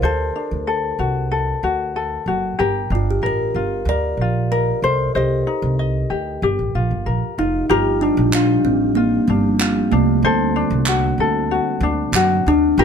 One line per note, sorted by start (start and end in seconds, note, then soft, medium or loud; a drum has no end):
0.00 0.29 D2 medium
0.00 0.35 D4 medium
0.00 0.10 F4 medium
0.00 0.66 A4 medium
0.00 2.58 C5 medium
0.05 1.92 A4 medium
0.36 2.91 D4 medium
0.51 0.91 D2 medium
0.67 1.30 A4 medium
0.99 1.52 C2 medium
0.99 1.62 F#4 medium
1.31 1.95 A4 medium
1.63 2.16 D2 medium
1.63 2.26 F#4 medium
1.96 2.59 A4 medium
2.26 2.53 F#1 medium
2.26 2.66 F#4 medium
2.59 2.86 G1 medium
2.59 6.09 G4 medium
2.59 3.21 A#4 medium
2.90 3.17 G1 medium
2.90 4.89 D4 medium
2.95 3.10 F4 medium
3.11 3.24 G4 medium
3.22 3.49 A1 medium
3.22 3.87 A#4 medium
3.26 3.85 A#4 medium
3.54 3.81 G1 medium
3.54 4.19 F4 medium
3.85 4.12 D2 medium
3.85 4.50 A#4 medium
3.85 4.54 D5 medium
4.17 4.70 A#1 medium
4.21 4.90 F4 medium
4.52 4.83 A#4 medium
4.52 4.84 A#4 medium
4.82 5.09 C2 medium
4.82 4.98 A4 medium
4.82 5.14 C5 medium
5.15 5.41 C2 medium
5.15 7.03 G4 medium
5.15 6.43 C5 medium
5.15 5.78 D#5 medium
5.47 6.43 D#4 medium
5.62 6.02 C2 medium
5.79 6.49 D#5 medium
6.10 6.36 D2 medium
6.10 6.43 G4 soft
6.42 6.55 G1 medium
6.42 7.69 G4 medium
6.59 6.72 A1 medium
6.75 6.88 A#1 medium
6.75 7.38 F4 medium
6.91 7.03 G1 medium
7.06 7.19 A#1 medium
7.06 7.70 A#4 medium
7.38 7.64 F1 medium
7.38 7.71 D#4 medium
7.38 7.69 F4 medium
7.69 8.09 G1 medium
7.69 10.22 F3 medium
7.69 10.22 G3 medium
7.69 8.00 F4 loud
7.69 8.34 G4 medium
7.69 10.22 G4 medium
7.69 8.65 A#4 medium
8.01 8.31 D4 medium
8.01 9.29 D4 medium
8.17 8.56 A#1 medium
8.33 8.66 D4 medium
8.33 8.95 F4 medium
8.33 clap medium
8.65 9.17 A1 medium
8.65 8.97 C4 medium
8.95 9.10 A#3 medium
8.95 9.59 F4 medium
9.28 9.80 G1 medium
9.28 9.93 G3 medium
9.28 9.92 D4 medium
9.60 10.30 F4 medium
9.60 clap medium
9.92 10.18 C2 medium
9.92 10.83 A3 medium
9.92 10.55 D4 medium
10.22 10.62 D2 medium
10.22 12.75 D3 medium
10.22 12.75 C4 medium
10.22 12.75 F#4 medium
10.22 11.19 A4 medium
10.22 12.78 C5 medium
10.56 11.83 D4 medium
10.70 11.10 C2 medium
10.86 11.50 F#4 medium
10.86 clap medium
11.18 11.57 D2 medium
11.18 12.78 A4 medium
11.51 12.14 F#4 medium
11.80 12.07 D2 loud
11.80 12.47 D4 medium
12.12 12.39 F#2 loud
12.12 12.84 F#4 medium
12.12 clap medium
12.46 12.72 D2 medium
12.46 12.85 D4 medium
12.46 12.79 D4 loud
12.78 12.85 G1 loud
12.78 12.85 F3 medium
12.78 12.85 A#3 medium
12.78 12.85 F4 loud
12.78 12.85 G4 medium
12.78 12.85 A#4 medium